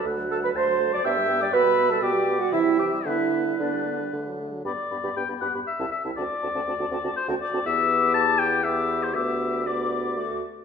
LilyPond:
<<
  \new Staff \with { instrumentName = "Flute" } { \time 3/4 \key g \major \tempo 4 = 119 r8 a''16 b''16 c'''8. d'''16 e'''8. d'''16 | b''8. a''16 g''8. fis''16 e''8 g''8 | e''4 d''4 r4 | b''16 r16 b''16 b''16 b''16 b''16 b''16 b''16 r16 a''16 r16 a''16 |
a''16 r16 a''16 a''16 a''16 a''16 a''16 a''16 r16 a''16 r16 a''16 | d'''2 d'''4 | d'''4 d'''4 d'''8 r8 | }
  \new Staff \with { instrumentName = "Oboe" } { \time 3/4 \key g \major fis''4 a''4 g''4 | e''4 d''4 e''4 | b'2~ b'8 r8 | d''4 g''8 fis''8 e''8 e''8 |
d''2 c''8 d''8 | e''4 a''8 g''8 e''8. c''16 | e''4 d''4. r8 | }
  \new Staff \with { instrumentName = "Clarinet" } { \time 3/4 \key g \major r8 a'16 b'16 c''8. d''16 e''8. d''16 | b'8. a'16 g'8. fis'16 e'8 g'8 | e'4 d'4 r4 | g'16 r16 g'16 g'16 g'16 g'16 g'16 g'16 r16 e'16 r16 e'16 |
fis'16 r16 fis'16 fis'16 fis'16 fis'16 fis'16 fis'16 r16 fis'16 r16 fis'16 | g'2 g'4 | g'4 g'4 fis'8 r8 | }
  \new Staff \with { instrumentName = "French horn" } { \time 3/4 \key g \major a16 fis16 a16 fis16 a16 fis16 a16 fis16 b16 g16 b16 g16 | b16 g16 b16 g16 b16 g16 b16 g16 e16 g16 e16 g16 | b16 g16 b16 g16 b16 g16 b16 g16 a16 fis16 a16 fis16 | b16 r16 b16 b16 b16 b16 b16 b16 r16 c'16 r16 c'16 |
c'16 r16 c'16 c'16 c'16 c'16 c'16 c'16 r16 c'16 r16 c'16 | b2 b4 | b4 b4 a8 r8 | }
  \new Staff \with { instrumentName = "Bassoon" } { \clef bass \time 3/4 \key g \major d,4 d,4 g,4 | b,4 b,4 c4 | d4 d4 d4 | g,16 r16 g,16 g,16 g,16 g,16 g,16 g,16 r16 c,16 r16 c,16 |
d,16 r16 d,16 d,16 d,16 d,16 d,16 d,16 r16 d,16 r16 d,16 | e,2. | d,2~ d,8 r8 | }
>>